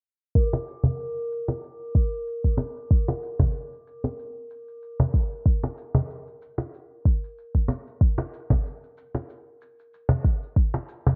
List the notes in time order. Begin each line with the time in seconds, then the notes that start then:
0.35 A#4, kick, shaker
0.53 cajon slap
0.68 shaker
0.84 cajon bass, shaker
1.00 shaker
1.17 shaker
1.32 shaker
1.48 cajon slap, shaker
1.64 shaker
1.95 kick, shaker
2.13 shaker
2.27 shaker
2.44 kick
2.57 cajon slap, shaker
2.77 shaker
2.91 kick, shaker
3.08 cajon slap
3.23 shaker
3.40 cajon bass, kick, shaker
3.55 shaker
3.73 shaker
3.87 shaker
4.04 cajon slap, shaker
4.19 shaker
4.50 shaker
4.68 shaker
4.82 shaker
5.00 cajon bass
5.14 kick, shaker
5.32 shaker
5.46 kick, shaker
5.64 cajon slap
5.78 shaker
5.95 cajon bass, shaker
6.10 shaker
6.27 shaker
6.42 shaker
6.58 cajon slap, shaker
6.74 shaker
7.05 kick, shaker
7.24 shaker
7.38 shaker
7.55 kick
7.68 cajon slap, shaker
7.87 shaker
8.01 kick, shaker
8.18 cajon slap
8.34 shaker
8.50 cajon bass, kick, cajon slap, shaker
8.66 shaker
8.83 shaker
8.97 shaker
9.15 cajon slap, shaker
9.30 shaker
9.61 shaker
9.79 shaker
9.94 shaker
10.09 cajon bass
10.24 kick, shaker
10.43 shaker
10.56 kick, shaker
10.74 cajon slap
10.89 shaker
11.06 cajon bass, shaker